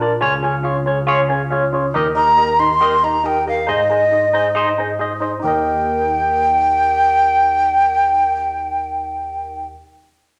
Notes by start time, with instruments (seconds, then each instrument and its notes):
Already playing: tine electric piano A#1 A#2
0.00 tine electric piano D4 F4 A#4 D5
0.21 tine electric piano C#2 C#3 C#4 F4 G#4 C#5
0.43 tine electric piano C#4 F4 G#4 C#5
0.63 tine electric piano C#4 F4 G#4 C#5
0.86 tine electric piano C#4 F4 G#4 C#5
1.07 tine electric piano C#4 F4 G#4 C#5
1.28 tine electric piano C#4 F4 G#4 C#5
1.50 tine electric piano C#4 F4 G#4 C#5
1.72 tine electric piano C#4 F4 G#4 C#5
1.94 tine electric piano D#2 D#3 D#4 G4 A#4 D#5
2.15 tine electric piano D#4 G4 A#4 D#5, flute A#5
2.36 tine electric piano D#4 G4 A#4 D#5
2.59 tine electric piano D#4 G4 A#4 D#5, flute C6
2.80 tine electric piano D#4 G4 A#4 D#5
3.03 tine electric piano D#4 G4 A#4 D#5, flute A#5
3.24 tine electric piano D#4 G4 A#4 D#5, flute G5
3.46 tine electric piano D#4 G4 A#4 D#5, flute F5
3.67 tine electric piano G#2 D#4 G#4 C5 D#5, flute D#5
3.89 tine electric piano D#4 G#4 C5 D#5
4.11 tine electric piano D#4 G#4 C5 D#5
4.33 tine electric piano D#4 G#4 C5 D#5
4.55 tine electric piano D#4 G#4 C5 D#5
4.78 tine electric piano D#4 G#4 C5 D#5
4.99 tine electric piano D#4 G#4 C5 D#5
5.20 tine electric piano D#4 G#4 C5 D#5
5.39 tine electric piano D#2 D#4 G4, flute G5
5.45 tine electric piano A#4 D#5